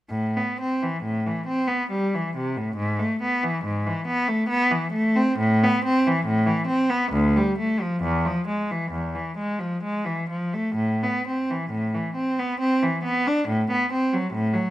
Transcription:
0.10 0.34 A2 medium
0.37 0.59 B3 soft
0.60 0.81 C4 soft
0.83 1.03 E3 soft
1.03 1.24 A2 soft
1.27 1.47 E3 soft
1.47 1.68 C4 soft
1.67 1.90 B3 soft
1.91 2.12 G3 medium
2.14 2.35 E3 soft
2.36 2.56 C3 soft
2.57 2.78 A2 soft
2.76 2.98 G#2 medium
2.99 3.21 A3 medium
3.22 3.43 B3 soft
3.44 3.65 E3 soft
3.64 3.86 G#2 medium
3.86 4.08 E3 soft
4.07 4.28 B3 medium
4.28 4.50 A3 medium
4.49 4.70 B3 medium
4.71 4.93 E3 medium
4.92 5.14 A3 medium
5.16 5.38 C4 medium
5.38 5.61 A2 medium
5.64 5.84 B3 medium
5.84 6.05 C4 medium
6.07 6.28 E3 medium
6.26 6.48 A2 medium
6.47 6.69 E3 medium
6.67 6.90 C4 medium
6.89 7.13 B3 medium
7.12 7.34 D2 medium
7.36 7.58 G3 medium
7.58 7.79 A3 medium
7.81 8.03 F3 medium
8.03 8.24 E2 medium
8.26 8.48 F3 medium
8.48 8.70 G#3 soft
8.71 8.93 E3 soft
8.92 9.14 E2 soft
9.15 9.38 E3 soft
9.37 9.60 G#3 soft
9.59 9.82 F3 soft
9.83 10.06 G#3 medium
10.05 10.30 E3 soft
10.30 10.54 F3 soft
10.54 10.79 A3 soft
10.75 11.01 A2 medium
11.03 11.26 B3 soft
11.27 11.49 C4 soft
11.51 11.71 E3 soft
11.70 11.91 A2 soft
11.94 12.15 E3 soft
12.15 12.36 C4 soft
12.39 12.59 B3 medium
12.60 12.80 C4 medium
12.83 13.03 E3 medium
13.04 13.24 B3 medium
13.27 13.46 D4 medium
13.48 13.67 A2 medium
13.71 13.90 B3 medium
13.92 14.11 C4 medium
14.13 14.32 F#3 medium
14.33 14.52 A2 medium
14.53 14.70 F#3 medium

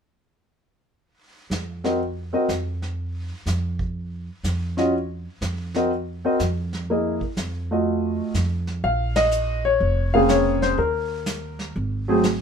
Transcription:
1.02 brush sweep soft
1.50 2.32 F2 medium
1.50 snare soft
1.50 hi-hat pedal soft
1.84 1.99 C4 medium
1.84 1.99 F#4 soft
1.84 1.99 A#4 soft
1.84 1.99 D#5 medium
1.84 snare soft
2.00 brush sweep soft
2.33 2.48 C4 medium
2.33 2.48 F#4 medium
2.33 2.48 A#4 medium
2.33 2.48 D#5 medium
2.48 3.30 F2 medium
2.48 snare soft
2.48 hi-hat pedal soft
2.82 snare soft
2.98 brush sweep soft
3.46 4.27 F2 medium
3.46 snare soft
3.46 hi-hat pedal medium
3.79 kick soft
3.95 brush sweep soft
4.44 5.25 F2 medium
4.44 snare soft
4.44 hi-hat pedal medium
4.77 4.92 C#4 medium
4.77 4.92 F4 medium
4.77 4.92 F#4 medium
4.77 4.93 D#5 medium
4.77 snare soft
4.93 brush sweep soft
5.41 6.23 F2 medium
5.41 snare soft
5.41 hi-hat pedal soft
5.74 5.90 C4 medium
5.74 5.90 F#4 medium
5.74 5.90 A#4 soft
5.74 5.90 D#5 medium
5.74 snare soft
5.91 brush sweep soft
6.25 6.39 C4 medium
6.25 6.39 F#4 medium
6.25 6.39 A#4 medium
6.25 6.39 D#5 medium
6.39 7.21 F2 medium
6.39 snare soft
6.39 hi-hat pedal medium
6.73 snare soft
6.89 7.19 A#3 medium
6.89 7.19 E4 soft
6.89 7.19 G#4 soft
6.89 7.20 D#5 medium
6.89 brush sweep soft
7.21 kick soft
7.37 8.18 F2 medium
7.37 snare medium
7.37 hi-hat pedal soft
7.71 8.32 A3 medium
7.71 8.32 F4 soft
7.71 8.32 F#4 soft
7.71 8.33 D#5 medium
7.86 brush sweep soft
8.34 8.80 F2 medium
8.34 snare soft
8.34 hi-hat pedal medium
8.67 snare soft
8.83 9.77 A#1 medium
8.83 9.17 F5 medium
8.83 brush sweep soft
9.16 9.61 D#5 loud
9.16 snare medium
9.16 ride medium
9.31 hi-hat pedal medium
9.65 10.15 C#5 medium
9.80 10.74 F1 medium
9.80 brush sweep soft
10.14 10.75 C#3 medium
10.14 10.75 A#3 medium
10.14 10.75 C4 medium
10.14 10.76 G#4 medium
10.14 10.28 F5 medium
10.29 10.63 C#5 medium
10.29 snare medium
10.29 hi-hat pedal medium
10.62 10.77 C5 medium
10.62 snare soft
10.78 11.71 D#2 medium
10.78 11.72 A#4 medium
10.78 brush sweep medium
11.26 snare medium
11.26 hi-hat pedal medium
11.59 snare soft
11.75 12.41 G#1 medium
11.75 brush sweep soft
12.08 12.22 F#3 medium
12.08 12.23 A3 medium
12.08 12.23 C4 medium
12.08 12.23 G#4 medium
12.23 snare medium
12.23 hi-hat pedal medium

